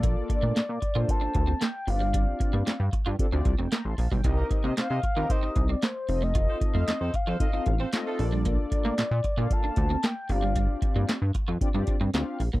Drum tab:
HH |x-x-x-x-x-x-x-o-|x-x-x-x-x-x-x-o-|x-x-x-x-x-x-x-o-|x-x-x-x-x-x-x-o-|
CP |----x-------x---|----x-------x---|----x-------x---|----x-------x---|
SD |----o-------o---|----o-------o---|----o-------o---|----o-------o---|
BD |o-o---o-o-o-----|o-o---o-o-o----o|o-o---o-o-o-----|o-o---o-o-o-----|

HH |x-x-x-x-x-x-x-o-|x-x-x-x-x-x-x-o-|
CP |----x-------x---|----x-------x---|
SD |----o-------o---|----o-------o---|
BD |o-o---o-o-o-----|o-o---o-o-o----o|